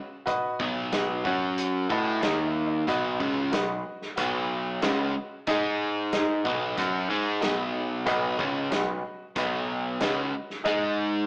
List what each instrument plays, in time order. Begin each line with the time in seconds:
Already playing: upright piano F#4 B4 D#5
0.26 upright piano F#4 B4 D#5, kick, closed hi-hat
0.60 picked electric bass B1, overdriven electric guitar B2 F#3 B3, kick
0.91 upright piano F#4 B4 D#5, snare, closed hi-hat
1.24 picked electric bass F#2, overdriven electric guitar F#3 C#4 F#4, upright piano F#4 C#5 F#5, kick
1.58 closed hi-hat
1.89 picked electric bass A2, overdriven electric guitar A3 E4 A4, upright piano F#4 B4 D#5 B5, kick
2.02 upright piano G#5
2.21 picked electric bass D#2, overdriven electric guitar D#3 A#3 D#4, upright piano D#4 A#4 D#5 F#5, snare, closed hi-hat
2.46 upright piano E5
2.66 upright piano D#5
2.87 picked electric bass B1, overdriven electric guitar B2 F#3 B3, upright piano F#4 B4 D#5, kick, closed hi-hat
3.20 picked electric bass C#2, overdriven electric guitar C#3 G#3 C#4, kick
3.51 picked electric bass B1, overdriven electric guitar B2 F#3, upright piano F#4 B4 D#5, snare, closed hi-hat
4.02 snare
4.16 picked electric bass B1, overdriven electric guitar B2 F#3 B3, upright piano F#4 B4 F#5, kick, closed hi-hat
4.82 picked electric bass C#2, overdriven electric guitar C#3 G#3 C#4, upright piano F#4 B4 D#5, snare, closed hi-hat
5.47 picked electric bass G#2, overdriven electric guitar G#3 D#4 G#4, upright piano D#4 G#4 D#5, kick, closed hi-hat
6.13 upright piano D#4 G#4 D#5, snare, closed hi-hat
6.44 picked electric bass B1, overdriven electric guitar B2 F#3 B3, upright piano F#4 B4 D#5, kick
6.78 picked electric bass F#2, overdriven electric guitar F#3 C#4 F#4, kick, closed hi-hat
7.09 picked electric bass G#2, overdriven electric guitar G#3 D#4 G#4
7.40 picked electric bass B1, overdriven electric guitar B2 F#3 B3, upright piano F#4 B4 D#5, snare, closed hi-hat
8.05 picked electric bass B1, overdriven electric guitar B2 F#3 B3, upright piano F#4 B4 D#5, kick, closed hi-hat
8.39 picked electric bass C#2, overdriven electric guitar C#3 G#3 C#4, kick
8.71 picked electric bass B1, overdriven electric guitar B2 F#3, upright piano F#4 B4 D#5, snare, closed hi-hat
9.36 picked electric bass B1, overdriven electric guitar B2 F#3 B3, upright piano F#4 B4 D#5, kick, closed hi-hat
10.00 picked electric bass C#2, overdriven electric guitar C#3 G#3 C#4, upright piano F#4 B4 D#5, snare, closed hi-hat
10.50 snare
10.64 picked electric bass G#2, overdriven electric guitar G#3 D#4 G#4, upright piano D#4 G#4 D#5, kick, closed hi-hat